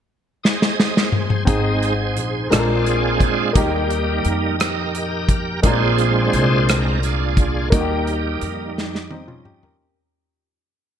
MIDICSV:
0, 0, Header, 1, 5, 480
1, 0, Start_track
1, 0, Tempo, 694444
1, 1018, Time_signature, 6, 3, 24, 8
1, 7600, End_track
2, 0, Start_track
2, 0, Title_t, "Tonewheel organ"
2, 0, Program_c, 0, 16
2, 301, Note_on_c, 0, 75, 76
2, 305, Note_on_c, 0, 68, 54
2, 305, Note_on_c, 0, 72, 54
2, 752, Note_off_c, 0, 75, 0
2, 995, Note_off_c, 0, 68, 0
2, 995, Note_off_c, 0, 72, 0
2, 1019, Note_on_c, 0, 56, 40
2, 1021, Note_on_c, 0, 60, 39
2, 1025, Note_on_c, 0, 63, 48
2, 1025, Note_on_c, 0, 72, 68
2, 1029, Note_on_c, 0, 68, 50
2, 1338, Note_off_c, 0, 56, 0
2, 1339, Note_off_c, 0, 60, 0
2, 1343, Note_off_c, 0, 63, 0
2, 1717, Note_off_c, 0, 68, 0
2, 1726, Note_on_c, 0, 70, 65
2, 1738, Note_on_c, 0, 56, 39
2, 1743, Note_on_c, 0, 60, 38
2, 1745, Note_on_c, 0, 62, 47
2, 1748, Note_on_c, 0, 65, 48
2, 1764, Note_off_c, 0, 72, 0
2, 1837, Note_off_c, 0, 70, 0
2, 1965, Note_on_c, 0, 68, 84
2, 1974, Note_off_c, 0, 62, 0
2, 1974, Note_off_c, 0, 65, 0
2, 1982, Note_on_c, 0, 62, 50
2, 1982, Note_on_c, 0, 65, 49
2, 2431, Note_off_c, 0, 56, 0
2, 2433, Note_off_c, 0, 60, 0
2, 2433, Note_off_c, 0, 62, 0
2, 2433, Note_off_c, 0, 65, 0
2, 2446, Note_on_c, 0, 67, 69
2, 2456, Note_on_c, 0, 55, 41
2, 2458, Note_on_c, 0, 58, 56
2, 2464, Note_on_c, 0, 63, 53
2, 2467, Note_off_c, 0, 68, 0
2, 2964, Note_off_c, 0, 67, 0
2, 3149, Note_off_c, 0, 55, 0
2, 3153, Note_off_c, 0, 58, 0
2, 3153, Note_off_c, 0, 63, 0
2, 3172, Note_on_c, 0, 75, 70
2, 3184, Note_on_c, 0, 67, 46
2, 3190, Note_on_c, 0, 70, 48
2, 3627, Note_off_c, 0, 75, 0
2, 3873, Note_off_c, 0, 67, 0
2, 3876, Note_off_c, 0, 70, 0
2, 3896, Note_on_c, 0, 56, 42
2, 3905, Note_on_c, 0, 62, 49
2, 3905, Note_on_c, 0, 68, 66
2, 3906, Note_on_c, 0, 60, 42
2, 3906, Note_on_c, 0, 72, 93
2, 3907, Note_on_c, 0, 65, 67
2, 4593, Note_off_c, 0, 68, 0
2, 4594, Note_off_c, 0, 65, 0
2, 4613, Note_off_c, 0, 56, 0
2, 4619, Note_off_c, 0, 60, 0
2, 4620, Note_off_c, 0, 62, 0
2, 4621, Note_on_c, 0, 56, 37
2, 4627, Note_on_c, 0, 60, 34
2, 4628, Note_on_c, 0, 62, 39
2, 4629, Note_on_c, 0, 70, 70
2, 4642, Note_off_c, 0, 72, 0
2, 4835, Note_off_c, 0, 56, 0
2, 4838, Note_off_c, 0, 60, 0
2, 4839, Note_off_c, 0, 62, 0
2, 4866, Note_on_c, 0, 68, 69
2, 4870, Note_off_c, 0, 70, 0
2, 4871, Note_on_c, 0, 62, 54
2, 4873, Note_on_c, 0, 65, 50
2, 5313, Note_off_c, 0, 68, 0
2, 5316, Note_off_c, 0, 62, 0
2, 5317, Note_off_c, 0, 65, 0
2, 5337, Note_on_c, 0, 55, 47
2, 5338, Note_on_c, 0, 58, 44
2, 5344, Note_on_c, 0, 67, 64
2, 5345, Note_on_c, 0, 63, 50
2, 5852, Note_off_c, 0, 67, 0
2, 6031, Note_off_c, 0, 58, 0
2, 6748, Note_off_c, 0, 55, 0
2, 6753, Note_off_c, 0, 63, 0
2, 7600, End_track
3, 0, Start_track
3, 0, Title_t, "Grand piano"
3, 0, Program_c, 1, 0
3, 1003, Note_on_c, 1, 60, 46
3, 1013, Note_on_c, 1, 44, 51
3, 1016, Note_on_c, 1, 63, 43
3, 1020, Note_on_c, 1, 68, 51
3, 1155, Control_c, 1, 64, 127
3, 1709, Note_off_c, 1, 44, 0
3, 1730, Note_on_c, 1, 56, 47
3, 1732, Note_off_c, 1, 60, 0
3, 1732, Note_on_c, 1, 58, 42
3, 1738, Note_off_c, 1, 63, 0
3, 1738, Note_on_c, 1, 46, 44
3, 1738, Note_on_c, 1, 62, 41
3, 1740, Note_off_c, 1, 68, 0
3, 1743, Note_on_c, 1, 65, 44
3, 1747, Note_on_c, 1, 69, 43
3, 1748, Control_c, 1, 64, 0
3, 1787, Note_off_c, 1, 69, 0
3, 1789, Note_on_c, 1, 70, 52
3, 1863, Control_c, 1, 64, 127
3, 2430, Note_off_c, 1, 58, 0
3, 2431, Note_off_c, 1, 46, 0
3, 2440, Note_on_c, 1, 58, 50
3, 2455, Note_off_c, 1, 56, 0
3, 2457, Note_on_c, 1, 51, 49
3, 2457, Note_on_c, 1, 63, 47
3, 2458, Note_off_c, 1, 62, 0
3, 2461, Note_off_c, 1, 65, 0
3, 2467, Control_c, 1, 64, 0
3, 2472, Note_on_c, 1, 67, 58
3, 2484, Note_off_c, 1, 70, 0
3, 2581, Control_c, 1, 64, 127
3, 3150, Note_off_c, 1, 51, 0
3, 3861, Note_off_c, 1, 58, 0
3, 3869, Note_off_c, 1, 63, 0
3, 3877, Note_off_c, 1, 67, 0
3, 3888, Note_on_c, 1, 56, 49
3, 3892, Note_on_c, 1, 58, 45
3, 3900, Note_on_c, 1, 62, 47
3, 3903, Note_on_c, 1, 46, 50
3, 3908, Control_c, 1, 64, 0
3, 3909, Note_on_c, 1, 65, 46
3, 3916, Note_on_c, 1, 70, 60
3, 4031, Control_c, 1, 64, 127
3, 4592, Note_off_c, 1, 46, 0
3, 5304, Note_off_c, 1, 56, 0
3, 5305, Note_off_c, 1, 58, 0
3, 5310, Note_off_c, 1, 62, 0
3, 5314, Note_off_c, 1, 65, 0
3, 5317, Note_off_c, 1, 70, 0
3, 5324, Note_on_c, 1, 58, 51
3, 5336, Note_on_c, 1, 63, 47
3, 5341, Note_on_c, 1, 51, 48
3, 5346, Control_c, 1, 64, 0
3, 5356, Note_on_c, 1, 66, 42
3, 5390, Note_off_c, 1, 66, 0
3, 5396, Note_on_c, 1, 67, 55
3, 5456, Control_c, 1, 64, 127
3, 6030, Note_off_c, 1, 51, 0
3, 6276, Note_off_c, 1, 63, 0
3, 6300, Note_on_c, 1, 63, 46
3, 6305, Note_on_c, 1, 60, 39
3, 6307, Note_off_c, 1, 67, 0
3, 6412, Note_off_c, 1, 63, 0
3, 6412, Note_on_c, 1, 65, 50
3, 6413, Note_on_c, 1, 61, 43
3, 6414, Note_off_c, 1, 60, 0
3, 6527, Note_off_c, 1, 65, 0
3, 6528, Note_off_c, 1, 61, 0
3, 6531, Note_on_c, 1, 67, 54
3, 6537, Note_on_c, 1, 63, 46
3, 6647, Note_off_c, 1, 67, 0
3, 6650, Note_off_c, 1, 63, 0
3, 6659, Note_on_c, 1, 70, 50
3, 6662, Note_on_c, 1, 67, 43
3, 6741, Note_off_c, 1, 58, 0
3, 6783, Control_c, 1, 64, 0
3, 6885, Note_off_c, 1, 70, 0
3, 6887, Note_off_c, 1, 67, 0
3, 7600, End_track
4, 0, Start_track
4, 0, Title_t, "Upright bass"
4, 0, Program_c, 2, 32
4, 1020, Note_on_c, 2, 32, 74
4, 1499, Note_off_c, 2, 32, 0
4, 1499, Note_on_c, 2, 34, 63
4, 1720, Note_off_c, 2, 34, 0
4, 1739, Note_on_c, 2, 34, 76
4, 2191, Note_off_c, 2, 34, 0
4, 2457, Note_on_c, 2, 39, 84
4, 2910, Note_off_c, 2, 39, 0
4, 2939, Note_on_c, 2, 41, 66
4, 3870, Note_off_c, 2, 41, 0
4, 3895, Note_on_c, 2, 34, 79
4, 4348, Note_off_c, 2, 34, 0
4, 4378, Note_on_c, 2, 36, 79
4, 5309, Note_off_c, 2, 36, 0
4, 5339, Note_on_c, 2, 39, 83
4, 5789, Note_off_c, 2, 39, 0
4, 5820, Note_on_c, 2, 41, 71
4, 6749, Note_off_c, 2, 41, 0
4, 7600, End_track
5, 0, Start_track
5, 0, Title_t, "Drums"
5, 312, Note_on_c, 9, 38, 45
5, 381, Note_off_c, 9, 38, 0
5, 430, Note_on_c, 9, 38, 50
5, 499, Note_off_c, 9, 38, 0
5, 550, Note_on_c, 9, 38, 59
5, 619, Note_off_c, 9, 38, 0
5, 672, Note_on_c, 9, 38, 60
5, 741, Note_off_c, 9, 38, 0
5, 776, Note_on_c, 9, 45, 70
5, 846, Note_off_c, 9, 45, 0
5, 899, Note_on_c, 9, 45, 72
5, 968, Note_off_c, 9, 45, 0
5, 1018, Note_on_c, 9, 36, 85
5, 1020, Note_on_c, 9, 42, 66
5, 1087, Note_off_c, 9, 36, 0
5, 1089, Note_off_c, 9, 42, 0
5, 1262, Note_on_c, 9, 42, 38
5, 1331, Note_off_c, 9, 42, 0
5, 1497, Note_on_c, 9, 42, 40
5, 1567, Note_off_c, 9, 42, 0
5, 1743, Note_on_c, 9, 42, 59
5, 1749, Note_on_c, 9, 37, 78
5, 1812, Note_off_c, 9, 42, 0
5, 1818, Note_off_c, 9, 37, 0
5, 1980, Note_on_c, 9, 42, 35
5, 2049, Note_off_c, 9, 42, 0
5, 2215, Note_on_c, 9, 36, 69
5, 2218, Note_on_c, 9, 42, 36
5, 2284, Note_off_c, 9, 36, 0
5, 2288, Note_off_c, 9, 42, 0
5, 2457, Note_on_c, 9, 36, 87
5, 2457, Note_on_c, 9, 42, 68
5, 2526, Note_off_c, 9, 42, 0
5, 2527, Note_off_c, 9, 36, 0
5, 2699, Note_on_c, 9, 42, 39
5, 2768, Note_off_c, 9, 42, 0
5, 2935, Note_on_c, 9, 42, 42
5, 3004, Note_off_c, 9, 42, 0
5, 3180, Note_on_c, 9, 42, 62
5, 3186, Note_on_c, 9, 37, 87
5, 3249, Note_off_c, 9, 42, 0
5, 3255, Note_off_c, 9, 37, 0
5, 3420, Note_on_c, 9, 42, 37
5, 3489, Note_off_c, 9, 42, 0
5, 3653, Note_on_c, 9, 36, 68
5, 3655, Note_on_c, 9, 42, 39
5, 3723, Note_off_c, 9, 36, 0
5, 3724, Note_off_c, 9, 42, 0
5, 3895, Note_on_c, 9, 42, 68
5, 3896, Note_on_c, 9, 36, 88
5, 3964, Note_off_c, 9, 42, 0
5, 3965, Note_off_c, 9, 36, 0
5, 4136, Note_on_c, 9, 42, 39
5, 4206, Note_off_c, 9, 42, 0
5, 4378, Note_on_c, 9, 42, 44
5, 4447, Note_off_c, 9, 42, 0
5, 4622, Note_on_c, 9, 42, 62
5, 4628, Note_on_c, 9, 37, 86
5, 4691, Note_off_c, 9, 42, 0
5, 4697, Note_off_c, 9, 37, 0
5, 4860, Note_on_c, 9, 42, 38
5, 4929, Note_off_c, 9, 42, 0
5, 5094, Note_on_c, 9, 36, 67
5, 5096, Note_on_c, 9, 42, 37
5, 5163, Note_off_c, 9, 36, 0
5, 5165, Note_off_c, 9, 42, 0
5, 5338, Note_on_c, 9, 36, 93
5, 5338, Note_on_c, 9, 42, 66
5, 5407, Note_off_c, 9, 36, 0
5, 5407, Note_off_c, 9, 42, 0
5, 5581, Note_on_c, 9, 42, 40
5, 5650, Note_off_c, 9, 42, 0
5, 5816, Note_on_c, 9, 42, 43
5, 5885, Note_off_c, 9, 42, 0
5, 6070, Note_on_c, 9, 38, 41
5, 6139, Note_off_c, 9, 38, 0
5, 6188, Note_on_c, 9, 38, 36
5, 6257, Note_off_c, 9, 38, 0
5, 6294, Note_on_c, 9, 48, 55
5, 6363, Note_off_c, 9, 48, 0
5, 6416, Note_on_c, 9, 47, 55
5, 6486, Note_off_c, 9, 47, 0
5, 6534, Note_on_c, 9, 45, 70
5, 6603, Note_off_c, 9, 45, 0
5, 6657, Note_on_c, 9, 43, 64
5, 6726, Note_off_c, 9, 43, 0
5, 7600, End_track
0, 0, End_of_file